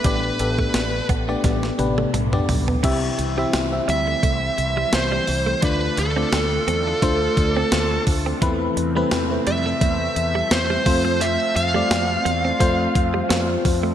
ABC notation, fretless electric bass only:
X:1
M:4/4
L:1/8
Q:"Swing 16ths" 1/4=86
K:C
V:1 name="Fretless electric bass" clef=bass
A,,, A,,, A,,, A,,, A,,, A,,, B,,, B,,, | C,, C,, C,, D,, C,, C,, C,, C,, | D,, D,, D,, E,, D,, D,, D,, D,, | E,, E,, E,, F,, E,, E,, E,, F,,- |
F,, F,, F,, E,, F,, F,, F,, F,, |]